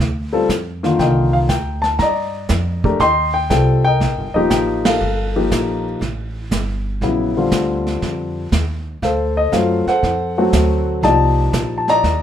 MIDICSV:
0, 0, Header, 1, 5, 480
1, 0, Start_track
1, 0, Key_signature, -2, "minor"
1, 0, Tempo, 502092
1, 949, Time_signature, 4, 2, 24, 8
1, 11686, End_track
2, 0, Start_track
2, 0, Title_t, "Grand piano"
2, 0, Program_c, 0, 0
2, 312, Note_on_c, 0, 55, 66
2, 315, Note_on_c, 0, 65, 55
2, 317, Note_on_c, 0, 60, 59
2, 320, Note_on_c, 0, 69, 70
2, 451, Note_off_c, 0, 55, 0
2, 453, Note_off_c, 0, 65, 0
2, 454, Note_off_c, 0, 60, 0
2, 456, Note_off_c, 0, 69, 0
2, 796, Note_on_c, 0, 51, 65
2, 797, Note_on_c, 0, 58, 63
2, 798, Note_on_c, 0, 50, 54
2, 802, Note_on_c, 0, 65, 77
2, 950, Note_on_c, 0, 79, 76
2, 970, Note_on_c, 0, 70, 53
2, 974, Note_on_c, 0, 75, 48
2, 1274, Note_on_c, 0, 77, 78
2, 1288, Note_off_c, 0, 79, 0
2, 1322, Note_off_c, 0, 77, 0
2, 1397, Note_off_c, 0, 51, 0
2, 1398, Note_off_c, 0, 50, 0
2, 1398, Note_off_c, 0, 58, 0
2, 1400, Note_off_c, 0, 65, 0
2, 1425, Note_on_c, 0, 79, 78
2, 1738, Note_on_c, 0, 81, 85
2, 1765, Note_off_c, 0, 79, 0
2, 1786, Note_off_c, 0, 81, 0
2, 1881, Note_off_c, 0, 70, 0
2, 1882, Note_off_c, 0, 75, 0
2, 1901, Note_on_c, 0, 82, 90
2, 1934, Note_on_c, 0, 74, 64
2, 1937, Note_on_c, 0, 75, 65
2, 2675, Note_off_c, 0, 82, 0
2, 2721, Note_on_c, 0, 62, 60
2, 2722, Note_on_c, 0, 57, 67
2, 2722, Note_on_c, 0, 67, 62
2, 2726, Note_on_c, 0, 70, 74
2, 2842, Note_off_c, 0, 74, 0
2, 2844, Note_off_c, 0, 75, 0
2, 2855, Note_off_c, 0, 57, 0
2, 2855, Note_off_c, 0, 62, 0
2, 2856, Note_off_c, 0, 67, 0
2, 2857, Note_off_c, 0, 70, 0
2, 2873, Note_on_c, 0, 84, 92
2, 2885, Note_on_c, 0, 75, 66
2, 2886, Note_on_c, 0, 79, 68
2, 3177, Note_off_c, 0, 79, 0
2, 3191, Note_on_c, 0, 79, 87
2, 3209, Note_off_c, 0, 84, 0
2, 3333, Note_off_c, 0, 79, 0
2, 3347, Note_on_c, 0, 79, 83
2, 3357, Note_on_c, 0, 60, 45
2, 3357, Note_on_c, 0, 65, 47
2, 3358, Note_on_c, 0, 55, 50
2, 3363, Note_on_c, 0, 69, 57
2, 3648, Note_off_c, 0, 55, 0
2, 3648, Note_off_c, 0, 60, 0
2, 3648, Note_off_c, 0, 65, 0
2, 3651, Note_off_c, 0, 69, 0
2, 3653, Note_off_c, 0, 79, 0
2, 3676, Note_on_c, 0, 79, 97
2, 3689, Note_off_c, 0, 75, 0
2, 3703, Note_on_c, 0, 75, 58
2, 3704, Note_on_c, 0, 70, 61
2, 4137, Note_off_c, 0, 75, 0
2, 4151, Note_on_c, 0, 75, 72
2, 4162, Note_on_c, 0, 53, 71
2, 4164, Note_on_c, 0, 58, 62
2, 4167, Note_on_c, 0, 63, 67
2, 4169, Note_on_c, 0, 67, 77
2, 4171, Note_off_c, 0, 79, 0
2, 4199, Note_off_c, 0, 75, 0
2, 4305, Note_on_c, 0, 79, 80
2, 4380, Note_off_c, 0, 79, 0
2, 4612, Note_off_c, 0, 70, 0
2, 4639, Note_on_c, 0, 77, 74
2, 4667, Note_on_c, 0, 69, 55
2, 4667, Note_on_c, 0, 70, 54
2, 4760, Note_off_c, 0, 53, 0
2, 4761, Note_off_c, 0, 58, 0
2, 4762, Note_off_c, 0, 63, 0
2, 4764, Note_off_c, 0, 67, 0
2, 5084, Note_off_c, 0, 77, 0
2, 5122, Note_on_c, 0, 53, 54
2, 5124, Note_on_c, 0, 58, 62
2, 5127, Note_on_c, 0, 63, 51
2, 5127, Note_on_c, 0, 67, 68
2, 5573, Note_off_c, 0, 70, 0
2, 5574, Note_off_c, 0, 69, 0
2, 5720, Note_off_c, 0, 53, 0
2, 5721, Note_off_c, 0, 58, 0
2, 5723, Note_off_c, 0, 63, 0
2, 5723, Note_off_c, 0, 67, 0
2, 6722, Note_on_c, 0, 49, 60
2, 6724, Note_on_c, 0, 59, 53
2, 6725, Note_on_c, 0, 64, 61
2, 6727, Note_on_c, 0, 54, 50
2, 7011, Note_off_c, 0, 49, 0
2, 7012, Note_off_c, 0, 59, 0
2, 7012, Note_off_c, 0, 64, 0
2, 7013, Note_off_c, 0, 54, 0
2, 7043, Note_on_c, 0, 50, 62
2, 7049, Note_on_c, 0, 55, 54
2, 7050, Note_on_c, 0, 60, 52
2, 7054, Note_on_c, 0, 65, 64
2, 8061, Note_off_c, 0, 50, 0
2, 8063, Note_off_c, 0, 55, 0
2, 8064, Note_off_c, 0, 60, 0
2, 8066, Note_off_c, 0, 65, 0
2, 8632, Note_on_c, 0, 77, 70
2, 8644, Note_on_c, 0, 69, 60
2, 8646, Note_on_c, 0, 72, 55
2, 8706, Note_off_c, 0, 77, 0
2, 8960, Note_on_c, 0, 75, 77
2, 9107, Note_on_c, 0, 77, 79
2, 9114, Note_off_c, 0, 75, 0
2, 9115, Note_on_c, 0, 57, 53
2, 9116, Note_on_c, 0, 54, 59
2, 9116, Note_on_c, 0, 60, 55
2, 9118, Note_on_c, 0, 65, 65
2, 9407, Note_off_c, 0, 57, 0
2, 9408, Note_off_c, 0, 54, 0
2, 9408, Note_off_c, 0, 60, 0
2, 9409, Note_off_c, 0, 65, 0
2, 9440, Note_off_c, 0, 69, 0
2, 9441, Note_off_c, 0, 72, 0
2, 9445, Note_on_c, 0, 78, 80
2, 9446, Note_off_c, 0, 77, 0
2, 9455, Note_on_c, 0, 69, 57
2, 9456, Note_on_c, 0, 72, 62
2, 9922, Note_on_c, 0, 54, 67
2, 9925, Note_on_c, 0, 57, 64
2, 9925, Note_on_c, 0, 66, 74
2, 9930, Note_on_c, 0, 60, 62
2, 10518, Note_off_c, 0, 69, 0
2, 10519, Note_off_c, 0, 72, 0
2, 10520, Note_off_c, 0, 54, 0
2, 10521, Note_off_c, 0, 57, 0
2, 10522, Note_off_c, 0, 66, 0
2, 10524, Note_off_c, 0, 60, 0
2, 10550, Note_on_c, 0, 81, 88
2, 10555, Note_on_c, 0, 75, 64
2, 10557, Note_on_c, 0, 53, 52
2, 10557, Note_on_c, 0, 74, 59
2, 10559, Note_on_c, 0, 63, 43
2, 10560, Note_on_c, 0, 58, 41
2, 10561, Note_on_c, 0, 67, 53
2, 10585, Note_off_c, 0, 78, 0
2, 11244, Note_off_c, 0, 81, 0
2, 11258, Note_on_c, 0, 81, 67
2, 11353, Note_off_c, 0, 81, 0
2, 11355, Note_off_c, 0, 74, 0
2, 11361, Note_off_c, 0, 75, 0
2, 11369, Note_on_c, 0, 74, 65
2, 11372, Note_on_c, 0, 82, 108
2, 11376, Note_on_c, 0, 75, 69
2, 11686, Note_off_c, 0, 53, 0
2, 11686, Note_off_c, 0, 58, 0
2, 11686, Note_off_c, 0, 63, 0
2, 11686, Note_off_c, 0, 67, 0
2, 11686, Note_off_c, 0, 74, 0
2, 11686, Note_off_c, 0, 75, 0
2, 11686, Note_off_c, 0, 82, 0
2, 11686, End_track
3, 0, Start_track
3, 0, Title_t, "Upright bass"
3, 0, Program_c, 1, 32
3, 0, Note_on_c, 1, 38, 70
3, 453, Note_off_c, 1, 38, 0
3, 467, Note_on_c, 1, 41, 70
3, 933, Note_off_c, 1, 41, 0
3, 946, Note_on_c, 1, 36, 74
3, 1413, Note_off_c, 1, 36, 0
3, 1422, Note_on_c, 1, 38, 80
3, 1890, Note_off_c, 1, 38, 0
3, 1901, Note_on_c, 1, 43, 72
3, 2370, Note_off_c, 1, 43, 0
3, 2385, Note_on_c, 1, 41, 83
3, 2852, Note_off_c, 1, 41, 0
3, 2866, Note_on_c, 1, 39, 76
3, 3332, Note_off_c, 1, 39, 0
3, 3346, Note_on_c, 1, 36, 79
3, 3812, Note_off_c, 1, 36, 0
3, 3827, Note_on_c, 1, 34, 82
3, 3993, Note_off_c, 1, 34, 0
3, 3993, Note_on_c, 1, 31, 58
3, 4145, Note_off_c, 1, 31, 0
3, 4151, Note_on_c, 1, 27, 63
3, 4298, Note_off_c, 1, 27, 0
3, 4307, Note_on_c, 1, 33, 86
3, 4773, Note_off_c, 1, 33, 0
3, 4789, Note_on_c, 1, 31, 82
3, 5254, Note_off_c, 1, 31, 0
3, 5270, Note_on_c, 1, 34, 78
3, 5735, Note_off_c, 1, 34, 0
3, 5744, Note_on_c, 1, 33, 81
3, 6212, Note_off_c, 1, 33, 0
3, 6225, Note_on_c, 1, 31, 79
3, 6692, Note_off_c, 1, 31, 0
3, 6703, Note_on_c, 1, 34, 79
3, 7171, Note_off_c, 1, 34, 0
3, 7185, Note_on_c, 1, 38, 84
3, 7652, Note_off_c, 1, 38, 0
3, 7665, Note_on_c, 1, 41, 74
3, 8132, Note_off_c, 1, 41, 0
3, 8144, Note_on_c, 1, 39, 75
3, 8611, Note_off_c, 1, 39, 0
3, 8626, Note_on_c, 1, 38, 82
3, 9092, Note_off_c, 1, 38, 0
3, 9101, Note_on_c, 1, 42, 85
3, 9410, Note_off_c, 1, 42, 0
3, 9585, Note_on_c, 1, 41, 68
3, 10052, Note_off_c, 1, 41, 0
3, 10065, Note_on_c, 1, 38, 83
3, 10532, Note_off_c, 1, 38, 0
3, 10540, Note_on_c, 1, 36, 76
3, 11009, Note_off_c, 1, 36, 0
3, 11023, Note_on_c, 1, 34, 84
3, 11491, Note_off_c, 1, 34, 0
3, 11505, Note_on_c, 1, 39, 73
3, 11686, Note_off_c, 1, 39, 0
3, 11686, End_track
4, 0, Start_track
4, 0, Title_t, "Muted upright bass strokes"
4, 9430, Note_on_c, 9, 29, 38
4, 9525, Note_off_c, 9, 29, 0
4, 11686, End_track
5, 0, Start_track
5, 0, Title_t, "Drums"
5, 1, Note_on_c, 9, 25, 42
5, 1, Note_on_c, 9, 38, 43
5, 97, Note_off_c, 9, 38, 0
5, 470, Note_on_c, 9, 36, 20
5, 472, Note_on_c, 9, 44, 56
5, 475, Note_on_c, 9, 38, 61
5, 565, Note_off_c, 9, 36, 0
5, 567, Note_off_c, 9, 44, 0
5, 570, Note_off_c, 9, 38, 0
5, 803, Note_on_c, 9, 38, 37
5, 898, Note_off_c, 9, 38, 0
5, 948, Note_off_c, 9, 25, 0
5, 948, Note_on_c, 9, 25, 46
5, 948, Note_on_c, 9, 36, 21
5, 948, Note_on_c, 9, 38, 41
5, 1044, Note_off_c, 9, 36, 0
5, 1044, Note_off_c, 9, 38, 0
5, 1424, Note_on_c, 9, 44, 53
5, 1427, Note_on_c, 9, 36, 20
5, 1427, Note_on_c, 9, 38, 63
5, 1519, Note_off_c, 9, 44, 0
5, 1522, Note_off_c, 9, 38, 0
5, 1523, Note_off_c, 9, 36, 0
5, 1755, Note_on_c, 9, 38, 38
5, 1850, Note_off_c, 9, 38, 0
5, 1903, Note_off_c, 9, 25, 0
5, 1903, Note_on_c, 9, 25, 51
5, 1903, Note_on_c, 9, 38, 43
5, 1905, Note_on_c, 9, 36, 25
5, 1999, Note_off_c, 9, 38, 0
5, 2001, Note_off_c, 9, 36, 0
5, 2378, Note_on_c, 9, 44, 61
5, 2381, Note_on_c, 9, 38, 60
5, 2386, Note_on_c, 9, 36, 21
5, 2474, Note_off_c, 9, 44, 0
5, 2477, Note_off_c, 9, 38, 0
5, 2481, Note_off_c, 9, 36, 0
5, 2716, Note_on_c, 9, 36, 47
5, 2812, Note_off_c, 9, 36, 0
5, 2865, Note_off_c, 9, 25, 0
5, 2865, Note_on_c, 9, 25, 46
5, 2865, Note_on_c, 9, 38, 40
5, 2868, Note_on_c, 9, 36, 24
5, 2961, Note_off_c, 9, 38, 0
5, 2963, Note_off_c, 9, 36, 0
5, 3348, Note_on_c, 9, 44, 57
5, 3350, Note_on_c, 9, 36, 25
5, 3350, Note_on_c, 9, 38, 56
5, 3443, Note_off_c, 9, 44, 0
5, 3446, Note_off_c, 9, 36, 0
5, 3446, Note_off_c, 9, 38, 0
5, 3832, Note_on_c, 9, 36, 21
5, 3834, Note_off_c, 9, 25, 0
5, 3834, Note_on_c, 9, 25, 43
5, 3834, Note_on_c, 9, 38, 43
5, 3927, Note_off_c, 9, 36, 0
5, 3930, Note_off_c, 9, 38, 0
5, 4305, Note_on_c, 9, 44, 51
5, 4308, Note_on_c, 9, 38, 61
5, 4311, Note_on_c, 9, 36, 21
5, 4401, Note_off_c, 9, 44, 0
5, 4403, Note_off_c, 9, 38, 0
5, 4406, Note_off_c, 9, 36, 0
5, 4635, Note_on_c, 9, 51, 59
5, 4637, Note_on_c, 9, 38, 74
5, 4730, Note_off_c, 9, 51, 0
5, 4733, Note_off_c, 9, 38, 0
5, 4786, Note_off_c, 9, 25, 0
5, 4786, Note_on_c, 9, 25, 50
5, 5271, Note_on_c, 9, 44, 56
5, 5273, Note_on_c, 9, 36, 20
5, 5274, Note_on_c, 9, 38, 62
5, 5367, Note_off_c, 9, 44, 0
5, 5368, Note_off_c, 9, 36, 0
5, 5369, Note_off_c, 9, 38, 0
5, 5752, Note_on_c, 9, 36, 21
5, 5753, Note_off_c, 9, 25, 0
5, 5753, Note_on_c, 9, 25, 48
5, 5753, Note_on_c, 9, 38, 40
5, 5848, Note_off_c, 9, 36, 0
5, 5849, Note_off_c, 9, 38, 0
5, 6227, Note_on_c, 9, 44, 63
5, 6230, Note_on_c, 9, 38, 60
5, 6232, Note_on_c, 9, 36, 28
5, 6322, Note_off_c, 9, 44, 0
5, 6325, Note_off_c, 9, 38, 0
5, 6327, Note_off_c, 9, 36, 0
5, 6710, Note_off_c, 9, 25, 0
5, 6710, Note_on_c, 9, 25, 41
5, 6710, Note_on_c, 9, 36, 22
5, 6710, Note_on_c, 9, 38, 37
5, 6806, Note_off_c, 9, 36, 0
5, 6806, Note_off_c, 9, 38, 0
5, 7184, Note_on_c, 9, 44, 63
5, 7187, Note_on_c, 9, 38, 61
5, 7189, Note_on_c, 9, 36, 26
5, 7279, Note_off_c, 9, 44, 0
5, 7282, Note_off_c, 9, 38, 0
5, 7284, Note_off_c, 9, 36, 0
5, 7521, Note_on_c, 9, 38, 35
5, 7616, Note_off_c, 9, 38, 0
5, 7669, Note_off_c, 9, 25, 0
5, 7669, Note_on_c, 9, 25, 51
5, 7669, Note_on_c, 9, 38, 43
5, 7670, Note_on_c, 9, 36, 18
5, 7765, Note_off_c, 9, 38, 0
5, 7766, Note_off_c, 9, 36, 0
5, 8146, Note_on_c, 9, 44, 58
5, 8148, Note_on_c, 9, 36, 25
5, 8149, Note_on_c, 9, 38, 60
5, 8242, Note_off_c, 9, 44, 0
5, 8243, Note_off_c, 9, 36, 0
5, 8244, Note_off_c, 9, 38, 0
5, 8627, Note_on_c, 9, 36, 18
5, 8631, Note_off_c, 9, 25, 0
5, 8631, Note_on_c, 9, 25, 41
5, 8631, Note_on_c, 9, 38, 42
5, 8723, Note_off_c, 9, 36, 0
5, 8726, Note_off_c, 9, 38, 0
5, 9106, Note_on_c, 9, 44, 49
5, 9108, Note_on_c, 9, 36, 22
5, 9109, Note_on_c, 9, 38, 61
5, 9202, Note_off_c, 9, 44, 0
5, 9204, Note_off_c, 9, 36, 0
5, 9204, Note_off_c, 9, 38, 0
5, 9440, Note_on_c, 9, 38, 37
5, 9536, Note_off_c, 9, 38, 0
5, 9589, Note_on_c, 9, 36, 25
5, 9594, Note_off_c, 9, 25, 0
5, 9594, Note_on_c, 9, 25, 41
5, 9594, Note_on_c, 9, 38, 43
5, 9684, Note_off_c, 9, 36, 0
5, 9689, Note_off_c, 9, 38, 0
5, 10066, Note_on_c, 9, 44, 60
5, 10068, Note_on_c, 9, 36, 26
5, 10068, Note_on_c, 9, 38, 68
5, 10161, Note_off_c, 9, 44, 0
5, 10163, Note_off_c, 9, 36, 0
5, 10164, Note_off_c, 9, 38, 0
5, 10546, Note_off_c, 9, 25, 0
5, 10546, Note_on_c, 9, 25, 46
5, 10546, Note_on_c, 9, 36, 24
5, 10546, Note_on_c, 9, 38, 45
5, 10641, Note_off_c, 9, 36, 0
5, 10641, Note_off_c, 9, 38, 0
5, 11024, Note_on_c, 9, 44, 54
5, 11026, Note_on_c, 9, 36, 26
5, 11027, Note_on_c, 9, 38, 62
5, 11120, Note_off_c, 9, 44, 0
5, 11122, Note_off_c, 9, 36, 0
5, 11123, Note_off_c, 9, 38, 0
5, 11356, Note_on_c, 9, 38, 33
5, 11451, Note_off_c, 9, 38, 0
5, 11507, Note_on_c, 9, 36, 21
5, 11511, Note_off_c, 9, 25, 0
5, 11511, Note_on_c, 9, 25, 44
5, 11511, Note_on_c, 9, 38, 43
5, 11603, Note_off_c, 9, 36, 0
5, 11607, Note_off_c, 9, 38, 0
5, 11686, Note_off_c, 9, 25, 0
5, 11686, End_track
0, 0, End_of_file